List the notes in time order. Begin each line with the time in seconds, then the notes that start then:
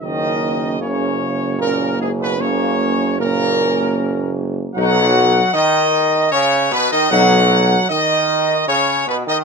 0.01 F#1 D#3 A#3 C#4 D#5
0.79 C#3 A#3 C#4 C#5
1.58 A#2 A#3 C#4 A#4
1.99 G#2 G#4
2.19 B2 B4
2.39 C#3 A#3 C#4 C#5
3.18 A#2 A#3 C#4 A#4
4.75 B1 F#3 D#4 F#5
5.53 D#3 D#5
6.31 C#3 C#5
6.71 B2 B4
6.91 D#3 D#5
7.11 B1 F#3 D#4 F#5
7.89 D#3 D#5
8.67 C#3 C#5
9.07 B2 B4
9.27 D#3 D#5